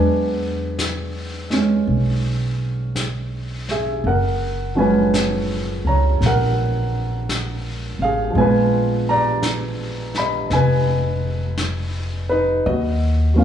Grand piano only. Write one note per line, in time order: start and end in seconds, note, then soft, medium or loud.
0.00 4.04 F#3 soft
0.00 1.49 G#3 soft
0.00 4.04 B3 soft
0.00 4.05 D4 soft
0.00 3.64 B4 soft
0.00 3.65 G#5 medium
1.50 4.04 G#3 soft
1.50 4.05 C#4 soft
3.71 4.04 G#4 soft
3.71 4.07 E5 medium
4.07 4.74 A#4 soft
4.07 4.79 F#5 medium
4.75 8.29 F3 soft
4.75 8.35 F#3 soft
4.75 8.32 G#3 soft
4.75 8.36 C#4 soft
4.75 5.82 G#5 medium
4.79 5.82 B4 medium
5.87 6.21 C#5 medium
5.87 6.20 A#5 medium
6.26 7.98 A#4 medium
6.26 7.98 F#5 medium
8.02 8.36 G#4 medium
8.02 8.34 F5 medium
8.30 12.62 F3 soft
8.30 12.64 G#3 soft
8.38 12.66 B3 soft
8.38 12.67 F4 soft
8.38 9.04 B4 medium
8.38 9.03 G#5 medium
9.09 10.12 D5 medium
9.09 10.11 A#5 medium
10.18 10.50 D#5 medium
10.18 10.53 B5 medium
10.53 12.27 B4 medium
10.53 12.35 G#5 medium
12.29 12.64 D#4 medium
12.29 12.63 B4 medium
12.66 13.44 F#4 soft
12.66 13.44 D#5 medium
13.34 13.44 F#3 soft
13.34 13.44 A#3 soft
13.34 13.44 C#4 soft
13.39 13.44 F5 soft